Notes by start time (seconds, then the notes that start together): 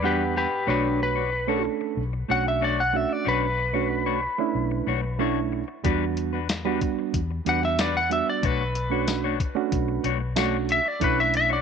Already playing: E2
0.02 G3 B3 D4 F#4 G4 B4 F#5
0.35 G4 B4, muted clean electric guitar stroke
0.51 muted clean electric guitar stroke
0.67 B1 A3 D4 F#4 B4 C#5
0.99 B4, muted clean electric guitar stroke
1.16 D4 F#4 C#5
1.32 muted clean electric guitar stroke
1.47 A3 C#4 D4 F#4 A4 C#5
1.65 muted clean electric guitar stroke
1.81 muted clean electric guitar stroke
1.97 B1
2.13 muted clean electric guitar stroke
2.29 B1 A3 C#4 D4 F#4 C#5 F#5
2.46 E5, muted clean electric guitar stroke
2.61 A3 D4 F#4 C#5 D5
2.80 F#5
2.93 A3 C#4 D4 F#4 E5, muted clean electric guitar stroke
3.09 D5, muted clean electric guitar stroke
3.25 B1 A3 D4 F#4 B4 C#5
3.58 muted clean electric guitar stroke
3.73 A3 C#4 D4 F#4 C#5
3.90 muted clean electric guitar stroke
4.06 A3 D4 F#4 C#5
4.22 muted clean electric guitar stroke
4.38 A3 C#4 D4 E4, muted clean electric guitar stroke
4.55 B1
4.71 muted clean electric guitar stroke
4.87 B1 A3 D4 F#4 C#5
5.03 muted clean electric guitar stroke
5.19 A3 C#4 D4 E4 F#4 C#5
5.52 muted clean electric guitar stroke
5.68 muted clean electric guitar stroke
5.84 E2 G3 B3 D4 F#4 B4, kick, closed hi-hat
6.17 muted clean electric guitar stroke, closed hi-hat
6.33 D4 F#4 B4
6.49 muted clean electric guitar stroke, snare, closed hi-hat, tambourine
6.65 G3 B3 D4 F#4 B4
6.81 kick, closed hi-hat
6.99 muted clean electric guitar stroke
7.14 E2, kick, closed hi-hat
7.31 muted clean electric guitar stroke
7.45 E2 G3 B3 D4 F#4 B4, closed hi-hat
7.49 F#5
7.63 E5, muted clean electric guitar stroke, snare
7.79 G3 D4 F#4 B4 D5, snare, closed hi-hat, tambourine
7.97 F#5
8.09 G3 B3 D4 F#4 E5, muted clean electric guitar stroke, closed hi-hat
8.27 D5, muted clean electric guitar stroke
8.43 B1 A3 D4 F#4 B4 C#5, kick, closed hi-hat
8.75 muted clean electric guitar stroke, closed hi-hat
8.90 A3 C#4 D4 F#4 C#5
9.08 snare, closed hi-hat, tambourine
9.24 A3 D4 F#4 C#5
9.40 muted clean electric guitar stroke, kick, closed hi-hat
9.55 A3 C#4 D4 F#4, muted clean electric guitar stroke
9.72 B1, kick, closed hi-hat
9.88 muted clean electric guitar stroke
10.04 B1 A3 D4 F#4 C#5, closed hi-hat
10.20 muted clean electric guitar stroke
10.36 A3 C#4 D4 F#4 C#5, snare, closed hi-hat, tambourine
10.69 E5, muted clean electric guitar stroke, closed hi-hat
10.86 D5, muted clean electric guitar stroke
11.00 B1 A3 C#4 D4 E4 F#4 C#5, kick, closed hi-hat
11.04 B4
11.20 E5
11.34 E5, muted clean electric guitar stroke, closed hi-hat
11.50 D4 F#4 C#5 D5